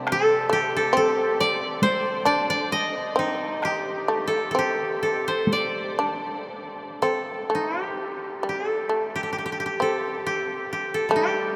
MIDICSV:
0, 0, Header, 1, 5, 480
1, 0, Start_track
1, 0, Tempo, 874636
1, 40, Time_signature, 4, 2, 24, 8
1, 1480, Tempo, 924499
1, 2920, Tempo, 1001669
1, 3880, Tempo, 949367
1, 4360, Tempo, 887574
1, 6056, End_track
2, 0, Start_track
2, 0, Title_t, "Koto"
2, 0, Program_c, 0, 107
2, 66, Note_on_c, 0, 69, 78
2, 289, Note_on_c, 0, 67, 75
2, 418, Note_off_c, 0, 69, 0
2, 420, Note_on_c, 0, 69, 68
2, 529, Note_off_c, 0, 69, 0
2, 531, Note_on_c, 0, 69, 69
2, 771, Note_on_c, 0, 74, 85
2, 1002, Note_on_c, 0, 72, 86
2, 1239, Note_off_c, 0, 74, 0
2, 1241, Note_on_c, 0, 74, 75
2, 1370, Note_off_c, 0, 74, 0
2, 1372, Note_on_c, 0, 74, 79
2, 1408, Note_off_c, 0, 67, 0
2, 1493, Note_on_c, 0, 75, 81
2, 1524, Note_off_c, 0, 74, 0
2, 1571, Note_off_c, 0, 69, 0
2, 1735, Note_on_c, 0, 63, 63
2, 1919, Note_off_c, 0, 72, 0
2, 1974, Note_on_c, 0, 67, 67
2, 2296, Note_off_c, 0, 75, 0
2, 2299, Note_on_c, 0, 69, 67
2, 2419, Note_off_c, 0, 69, 0
2, 2421, Note_on_c, 0, 69, 52
2, 2459, Note_off_c, 0, 67, 0
2, 2461, Note_on_c, 0, 67, 64
2, 2687, Note_off_c, 0, 69, 0
2, 2689, Note_on_c, 0, 69, 63
2, 2820, Note_on_c, 0, 72, 69
2, 2946, Note_on_c, 0, 74, 69
2, 2975, Note_off_c, 0, 63, 0
2, 3474, Note_off_c, 0, 67, 0
2, 3619, Note_off_c, 0, 69, 0
2, 3649, Note_off_c, 0, 72, 0
2, 3663, Note_on_c, 0, 69, 55
2, 3713, Note_off_c, 0, 74, 0
2, 3917, Note_on_c, 0, 63, 50
2, 4059, Note_off_c, 0, 63, 0
2, 4059, Note_on_c, 0, 67, 50
2, 4394, Note_off_c, 0, 69, 0
2, 4396, Note_off_c, 0, 67, 0
2, 4396, Note_on_c, 0, 67, 44
2, 4493, Note_off_c, 0, 67, 0
2, 4493, Note_on_c, 0, 69, 44
2, 4756, Note_on_c, 0, 67, 54
2, 4795, Note_off_c, 0, 67, 0
2, 4797, Note_on_c, 0, 67, 42
2, 4846, Note_off_c, 0, 67, 0
2, 4848, Note_on_c, 0, 67, 42
2, 4878, Note_off_c, 0, 67, 0
2, 4880, Note_on_c, 0, 67, 41
2, 4917, Note_off_c, 0, 67, 0
2, 4919, Note_on_c, 0, 67, 50
2, 4952, Note_off_c, 0, 67, 0
2, 4954, Note_on_c, 0, 67, 41
2, 4994, Note_off_c, 0, 67, 0
2, 4996, Note_on_c, 0, 67, 51
2, 5026, Note_off_c, 0, 67, 0
2, 5028, Note_on_c, 0, 67, 40
2, 5113, Note_off_c, 0, 69, 0
2, 5115, Note_on_c, 0, 69, 54
2, 5354, Note_off_c, 0, 67, 0
2, 5356, Note_on_c, 0, 67, 60
2, 5604, Note_off_c, 0, 67, 0
2, 5606, Note_on_c, 0, 67, 53
2, 5720, Note_off_c, 0, 69, 0
2, 5722, Note_on_c, 0, 69, 56
2, 5837, Note_off_c, 0, 67, 0
2, 5839, Note_on_c, 0, 67, 57
2, 6056, Note_off_c, 0, 67, 0
2, 6056, Note_off_c, 0, 69, 0
2, 6056, End_track
3, 0, Start_track
3, 0, Title_t, "Shamisen"
3, 0, Program_c, 1, 106
3, 271, Note_on_c, 1, 57, 64
3, 510, Note_on_c, 1, 60, 71
3, 515, Note_off_c, 1, 57, 0
3, 992, Note_off_c, 1, 60, 0
3, 1237, Note_on_c, 1, 62, 61
3, 1717, Note_off_c, 1, 62, 0
3, 1719, Note_on_c, 1, 60, 68
3, 1958, Note_off_c, 1, 60, 0
3, 2200, Note_on_c, 1, 57, 59
3, 2435, Note_off_c, 1, 57, 0
3, 2441, Note_on_c, 1, 60, 59
3, 2924, Note_off_c, 1, 60, 0
3, 3168, Note_on_c, 1, 62, 58
3, 3647, Note_off_c, 1, 62, 0
3, 3665, Note_on_c, 1, 60, 54
3, 3892, Note_on_c, 1, 57, 56
3, 3893, Note_off_c, 1, 60, 0
3, 4362, Note_off_c, 1, 57, 0
3, 4364, Note_on_c, 1, 55, 51
3, 4608, Note_off_c, 1, 55, 0
3, 4615, Note_on_c, 1, 57, 47
3, 5098, Note_off_c, 1, 57, 0
3, 5104, Note_on_c, 1, 60, 53
3, 5575, Note_off_c, 1, 60, 0
3, 5812, Note_on_c, 1, 57, 63
3, 6056, Note_off_c, 1, 57, 0
3, 6056, End_track
4, 0, Start_track
4, 0, Title_t, "Koto"
4, 0, Program_c, 2, 107
4, 0, Note_on_c, 2, 48, 52
4, 0, Note_on_c, 2, 55, 44
4, 0, Note_on_c, 2, 60, 39
4, 0, Note_on_c, 2, 62, 36
4, 0, Note_on_c, 2, 67, 38
4, 155, Note_off_c, 2, 55, 0
4, 275, Note_off_c, 2, 60, 0
4, 396, Note_off_c, 2, 62, 0
4, 512, Note_off_c, 2, 48, 0
4, 512, Note_off_c, 2, 67, 0
4, 5801, Note_on_c, 2, 55, 45
4, 6056, Note_off_c, 2, 55, 0
4, 6056, End_track
5, 0, Start_track
5, 0, Title_t, "Taiko and cinematic ensemble drums"
5, 39, Note_on_c, 9, 37, 56
5, 94, Note_off_c, 9, 37, 0
5, 999, Note_on_c, 9, 48, 55
5, 1054, Note_off_c, 9, 48, 0
5, 1961, Note_on_c, 9, 37, 46
5, 2013, Note_off_c, 9, 37, 0
5, 2920, Note_on_c, 9, 48, 46
5, 2968, Note_off_c, 9, 48, 0
5, 6056, End_track
0, 0, End_of_file